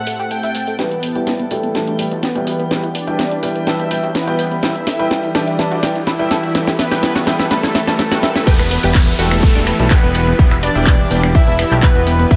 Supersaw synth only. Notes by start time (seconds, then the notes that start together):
Already playing: F#5
0.31 G5
0.79 B3 B4
1.51 A3 A4
2.23 B3 B4
2.95 D4 D5
3.67 E4 E5
4.15 B3 B4
4.63 E4 E5
5.35 D4 D5
6.07 E4 E5
6.79 B3 B4
7.51 A3 A4
7.99 A3 A4
8.47 B3 B4
9.19 A3 A4
9.91 B3 B4
10.63 D4 D5
11.35 E4 E5
11.83 B3 B4
12.31 E4 E5